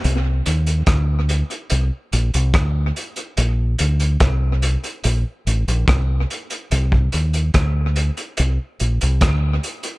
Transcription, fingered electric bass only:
\new Staff \with { instrumentName = "Fingered electric bass" } { \clef bass \time 4/4 \key c \dorian \tempo 4 = 72 c,8 ees,8 d,8. r16 c,16 r16 bes,,16 c,16 d,8 r8 | bes,,8 d,8 c,8. r16 bes,,16 r16 a,,16 bes,,16 c,8 r8 | c,8 ees,8 d,8. r16 c,16 r16 bes,,16 c,16 d,8 r8 | }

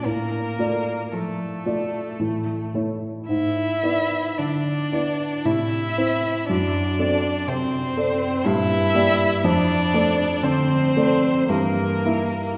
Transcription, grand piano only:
\new Staff \with { instrumentName = "Grand piano" } { \time 3/4 \key d \minor \tempo 4 = 57 a,8 <a f' d''>4 <a f' d''>8 a,8 <a e' cis''>8 | gis,8 <b e' d''>4 <b e' d''>8 a,8 <c' e' c''>8 | fis,8 <c' a' d''>4 <c' a' d''>8 g,8 <bes g' d''>8 | f,8 <a a' d''>4 <a a' d''>8 g,8 <bes e' e''>8 | }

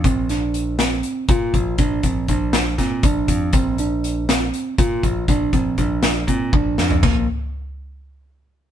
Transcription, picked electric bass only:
\new Staff \with { instrumentName = "Picked electric bass" } { \clef bass \time 7/8 \key bes \major \tempo 4 = 120 bes,,2 r8 bes,8 bes,,8 | bes,,8 bes,,8 bes,,4 bes,8 bes,,8 f,8 | bes,,2 r8 bes,8 bes,,8 | bes,,8 bes,,8 bes,,4 bes,8 bes,,8 f,8 |
bes,,8 r2. | }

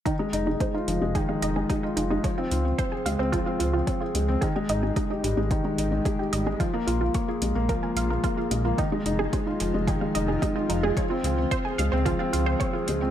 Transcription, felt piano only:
\new Staff \with { instrumentName = "Felt piano" } { \time 4/4 \key f \minor \tempo 4 = 110 ees16 aes16 ees'16 aes16 aes16 f'16 f16 aes16 ees16 aes16 ees'16 aes16 aes16 f'16 f16 aes16 | f16 c'16 f'16 c'16 c'16 aes'16 aes16 c'16 f16 c'16 f'16 c'16 c'16 aes'16 aes16 c'16 | ees16 aes16 ees'16 aes16 aes16 g'16 g16 aes16 ees16 aes16 ees'16 aes16 aes16 g'16 g16 aes16 | f16 bes16 f'16 bes16 bes16 aes'16 aes16 bes16 f16 bes16 f'16 bes16 bes16 aes'16 aes16 bes16 |
ees16 aes16 ees'16 aes16 aes16 f'16 f16 aes16 ees16 aes16 ees'16 aes16 aes16 f'16 f16 aes16 | f16 c'16 f'16 c'16 c'16 aes'16 aes16 c'16 f16 c'16 f'16 c'16 c'16 aes'16 aes16 c'16 | }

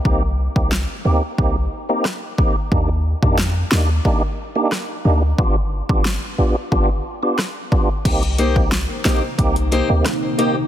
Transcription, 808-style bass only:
\new Staff \with { instrumentName = "808-style bass" } { \clef bass \time 4/4 \key c \minor \tempo 4 = 90 c,8. c,8 r16 d,16 r16 c,8 r4. | ees,8. f,8. ees,8 r4. d,8 | g,,8. g,,8 r16 a,,16 r16 g,,8 r4. | c,4~ c,16 r16 bes,,16 r16 c,8. d,16 r4 | }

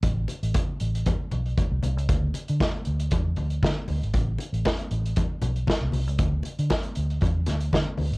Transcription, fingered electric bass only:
\new Staff \with { instrumentName = "Fingered electric bass" } { \clef bass \time 4/4 \key a \dorian \tempo 4 = 117 a,,8 r16 a,,16 r8 a,,8 r8 b,,8 r16 c,16 c,16 cis,16 | d,8 r16 d16 r8 d,8 e,8 d,8 d16 r16 d,16 aes,,16 | a,,8 r16 a,,16 r8 a,,8 r8 b,,8 r16 c,16 c,16 cis,16 | d,8 r16 d16 r8 d,8 e,8 d,8 d16 r16 d,16 aes,,16 | }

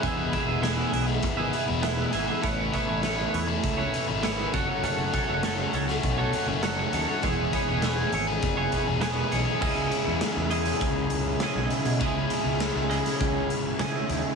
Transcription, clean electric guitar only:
\new Staff \with { instrumentName = "Clean electric guitar" } { \time 4/4 \key cis \minor \tempo 4 = 100 <e gis b e' gis' e''>8 <b e' gis' e''>16 <b e' gis' e''>16 <e gis b e' gis' e''>8 <b e' gis' e''>8. <b e' gis' e''>8. <e gis b e' gis' e''>8 <b e' gis' e''>16 <b e' gis' e''>16 | <a b e' b' cis''>8 <b e' b' cis''>16 <e' b' cis''>16 <a b e' b' cis''>8 <b e' b' cis''>8. <e' b' cis''>8. <a b e' b' cis''>8 <fis cis' fis' a' cis''>16 <fis' a' cis''>16 | <fis cis' fis' a' cis''>8 <cis' fis' a' cis''>16 <fis' a' cis''>16 <fis cis' fis' a' cis''>8 <cis' fis' a' cis''>8. <fis' a' cis''>8. <fis cis' fis' a' cis''>8 <cis' fis' a' cis''>16 <fis' a' cis''>16 | <e gis b e' gis' cis''>8 <b e' gis' cis''>16 <b e' gis' cis''>16 <e gis b e' gis' cis''>8 <b e' gis' cis''>8. <b e' gis' cis''>8. <e gis b e' gis' cis''>8 <b e' gis' cis''>16 <b e' gis' cis''>16 |
<cis gis cis' e' gis' dis''>4. <cis gis cis' e' gis' dis''>4. <cis gis cis' e' gis' dis''>4 | <cis gis cis' e' gis' dis''>4. <cis gis cis' e' gis' dis''>4. <cis gis cis' e' gis' dis''>4 | }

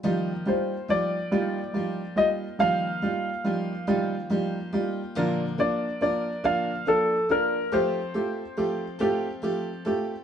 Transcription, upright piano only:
\new Staff \with { instrumentName = "Upright piano" } { \time 6/8 \key ees \lydian \tempo 4. = 47 <g ees' f'>8 <g ees' f'>8 <g ees' f'>8 <g ees' f'>8 <g ees' f'>8 <g ees' f'>8 | <g ees' f'>8 <g ees' f'>8 <g ees' f'>8 <g ees' f'>8 <g ees' f'>8 <g ees' f'>8 | <bes d' f'>8 <bes d' f'>8 <bes d' f'>8 <bes d' f'>8 <bes d' f'>8 <bes d' f'>8 | <a f' g'>8 <a f' g'>8 <a f' g'>8 <a f' g'>8 <a f' g'>8 <a f' g'>8 | }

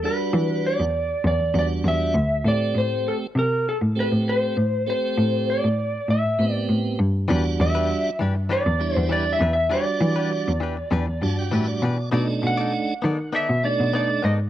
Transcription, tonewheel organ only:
\new Staff \with { instrumentName = "Tonewheel organ" } { \time 4/4 \key e \minor \tempo 4 = 99 << { r1 | r1 | r1 | r1 |
r2 r8 a''16 g''16 e''16 d''8. | r1 | } \\ { <g d' fis'>4. r4 <g d' fis'>4 r8 | <a c' g'>4. r4 <a c' g'>4 r8 | <a c' g'>4. r4 <b c' g'>4 r8 | <g d' fis'>4. r4 <g d' e'>4 r8 |
<g d' fis'>4. r4 <g d' fis'>4 r8 | <a d' dis'>4. r4 <a d' dis'>4 r8 | } >> }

